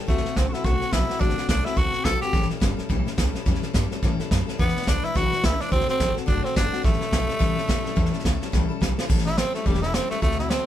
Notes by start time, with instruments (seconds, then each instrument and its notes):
0.07 upright bass D2, steel-string acoustic guitar D3 A3 C4 F#4 A4, tenor saxophone A3, kick, snare
0.17 snare
0.23 steel-string acoustic guitar C4 F#4 A4, muted upright bass stroke, snare
0.35 upright bass C#2, steel-string acoustic guitar A3 C4 F#4 A4, tenor saxophone C4, kick, snare, hi-hat pedal
0.49 tenor saxophone F#4, steel-string acoustic guitar A4
0.53 steel-string acoustic guitar C4 F#4, tenor saxophone E4, muted upright bass stroke, snare
0.64 upright bass C2, steel-string acoustic guitar D3 A3 C4 F#4 A4, tenor saxophone F#4, kick, snare
0.80 steel-string acoustic guitar C4 F#4 A4, muted upright bass stroke, snare
0.91 upright bass B1, steel-string acoustic guitar A3 C4 F#4 A4, tenor saxophone E4, kick, snare, hi-hat pedal
1.07 steel-string acoustic guitar C4 F#4 A4, snare
1.19 upright bass A1, steel-string acoustic guitar D3 A3 C4 F#4 A4, tenor saxophone D4, kick, snare
1.30 snare
1.36 steel-string acoustic guitar C4 F#4 A4, muted upright bass stroke, snare
1.48 upright bass C2, steel-string acoustic guitar A3 C4 F#4 A4, tenor saxophone D4, kick, snare, hi-hat pedal
1.63 steel-string acoustic guitar C4 F#4 A4, tenor saxophone E4, snare
1.76 upright bass D2, steel-string acoustic guitar D3 A3 C4 F#4 A4, tenor saxophone F#4, kick, snare
1.92 steel-string acoustic guitar C4 F#4 A4, snare
2.04 upright bass B1, steel-string acoustic guitar A3 C4 F#4 A4, tenor saxophone A4, kick, snare, hi-hat pedal
2.21 steel-string acoustic guitar C4 F#4 A4, tenor saxophone G4, muted upright bass stroke, snare
2.33 upright bass A1, steel-string acoustic guitar A2 E3 G3 C#4 E4 A4, kick, snare
2.42 snare
2.49 steel-string acoustic guitar G3 C#4 E4 A4, snare
2.60 upright bass G1, steel-string acoustic guitar G3 C#4 E4 A4, kick, snare, hi-hat pedal
2.77 steel-string acoustic guitar G3 C#4 E4 A4, muted upright bass stroke, snare
2.89 upright bass B1, steel-string acoustic guitar A2 E3 G3 C#4 E4 A4, kick, snare
3.05 steel-string acoustic guitar G3 C#4 E4 A4, snare
3.16 upright bass C#2, steel-string acoustic guitar G3 C#4 E4 A4, kick, snare, hi-hat pedal
3.33 steel-string acoustic guitar G3 C#4 E4 A4, muted upright bass stroke, snare
3.46 upright bass E2, steel-string acoustic guitar A2 E3 G3 C#4 E4 A4, kick, snare
3.55 snare
3.62 steel-string acoustic guitar G3 C#4 E4 A4, muted upright bass stroke, snare
3.73 upright bass G2, steel-string acoustic guitar G3 C#4 E4 A4, kick, snare, hi-hat pedal
3.91 steel-string acoustic guitar G3 C#4 E4 A4, muted upright bass stroke, snare
4.02 steel-string acoustic guitar A2 E3 G3 C#4 E4 A4, upright bass A2, kick, snare
4.20 steel-string acoustic guitar G3 C#4 E4 A4, muted upright bass stroke, snare
4.31 upright bass F#2, steel-string acoustic guitar G3 C#4 E4 A4, kick, snare, hi-hat pedal
4.47 steel-string acoustic guitar G3 C#4 E4 A4, snare
4.59 upright bass E2, steel-string acoustic guitar E3 G#3 D4 E4 B4, tenor saxophone B3, kick, snare
4.68 snare
4.75 steel-string acoustic guitar D4 E4 B4, muted upright bass stroke, snare
4.82 steel-string acoustic guitar G#3, snare
4.87 upright bass D2, steel-string acoustic guitar D4 E4 B4, tenor saxophone D4, kick, snare, hi-hat pedal
5.03 steel-string acoustic guitar D4 E4 B4, tenor saxophone E4, muted upright bass stroke, snare
5.15 upright bass B1, steel-string acoustic guitar E3 G#3 D4 E4 B4, tenor saxophone F#4, kick, snare
5.32 steel-string acoustic guitar D4 E4 B4, snare
5.43 upright bass C#2, steel-string acoustic guitar G#3 D4 E4 B4, tenor saxophone E4, kick, snare, hi-hat pedal
5.59 tenor saxophone D4, steel-string acoustic guitar D4 E4 B4, snare
5.70 upright bass D2, steel-string acoustic guitar D3 A3 C4 F#4 A4, tenor saxophone C4, kick, snare
5.80 snare
5.87 tenor saxophone C4, steel-string acoustic guitar C4 F#4 A4, snare
5.98 upright bass A1, steel-string acoustic guitar A3 C4 F#4 A4, kick, snare, hi-hat pedal
6.15 steel-string acoustic guitar C4 F#4 A4, snare
6.26 upright bass F#1, steel-string acoustic guitar D3 A3 C4 F#4 A4, tenor saxophone D4, kick, snare
6.43 tenor saxophone C4, steel-string acoustic guitar C4 F#4 A4, snare
6.54 upright bass G1, steel-string acoustic guitar A3 C4 F#4 A4, tenor saxophone D4, kick, snare, hi-hat pedal
6.71 steel-string acoustic guitar C4 F#4 A4, muted upright bass stroke, snare
6.82 upright bass A1, steel-string acoustic guitar A2 E3 G3 C#4 E4 A4, tenor saxophone A3, kick, snare
6.93 snare
6.99 steel-string acoustic guitar G3 C#4 E4 A4, snare
7.11 upright bass B1, steel-string acoustic guitar G3 C#4 E4 A4, kick, snare, hi-hat pedal
7.27 steel-string acoustic guitar G3 C#4 E4 A4, muted upright bass stroke, snare
7.39 upright bass C#2, steel-string acoustic guitar A2 E3 G3 C#4 E4 A4, kick, snare
7.56 steel-string acoustic guitar G3 C#4 E4 A4, snare
7.67 upright bass F2, steel-string acoustic guitar G3 C#4 E4 A4, kick, snare, hi-hat pedal
7.85 steel-string acoustic guitar G3 C#4 E4 A4, muted upright bass stroke, snare
7.96 upright bass E2, steel-string acoustic guitar A2 E3 G3 C#4 E4 A4, kick, snare
8.05 snare
8.13 steel-string acoustic guitar G3 C#4 E4 A4, snare
8.19 snare
8.24 upright bass D2, steel-string acoustic guitar G3 C#4 E4 A4, kick, snare, hi-hat pedal
8.41 steel-string acoustic guitar G3 C#4 E4 A4, muted upright bass stroke, snare
8.52 upright bass C#2, steel-string acoustic guitar A2 E3 G3 C#4 E4 A4, kick, snare
8.69 steel-string acoustic guitar G3 C#4 E4 A4, muted upright bass stroke
8.81 upright bass B1, steel-string acoustic guitar G3 C#4 E4 A4, kick, snare, hi-hat pedal
8.97 steel-string acoustic guitar G3 C#4 E4 A4, snare
9.09 upright bass A1, steel-string acoustic guitar A2 E3 G3 C#4 E4 A4, kick, snare, crash
9.18 snare
9.26 steel-string acoustic guitar G3 C#4 E4 A4, tenor saxophone E4, snare
9.37 steel-string acoustic guitar G3 C#4 E4 A4, tenor saxophone C4, snare, hi-hat pedal
9.54 steel-string acoustic guitar G3 C#4 E4 A4, tenor saxophone A3, muted upright bass stroke, snare
9.66 upright bass E1, steel-string acoustic guitar A2 E3 G3 C#4 E4 A4, tenor saxophone G3, kick, snare
9.74 snare
9.81 steel-string acoustic guitar G3 C#4 E4 A4, tenor saxophone E4, snare
9.93 steel-string acoustic guitar G3 C#4 E4 A4, tenor saxophone C4, snare, hi-hat pedal
10.09 steel-string acoustic guitar G3 C#4 E4 A4, tenor saxophone A3, muted upright bass stroke, snare
10.21 upright bass D2, steel-string acoustic guitar D3 A3 C4 F#4 A4, tenor saxophone A3, kick, snare
10.31 snare
10.37 steel-string acoustic guitar C4 F#4 A4, tenor saxophone E4, snare
10.49 steel-string acoustic guitar A3 C4 F#4 A4, tenor saxophone C4, snare, hi-hat pedal